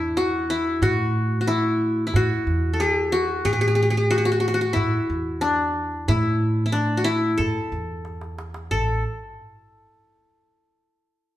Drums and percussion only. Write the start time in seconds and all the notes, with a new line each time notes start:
0.17 darbuka tek
0.82 darbuka dum
1.48 darbuka tek
2.14 darbuka dum
2.47 darbuka ka
2.80 darbuka tek
3.45 darbuka dum
4.11 darbuka tek
4.76 darbuka dum
5.10 darbuka ka
5.42 darbuka tek
5.92 darbuka ka
6.08 darbuka dum
6.25 darbuka ka
6.74 darbuka tek
7.40 darbuka dum
7.56 darbuka ka
7.73 darbuka ka
8.05 darbuka tek
8.21 darbuka ka
8.39 darbuka tek
8.54 darbuka ka
8.71 darbuka dum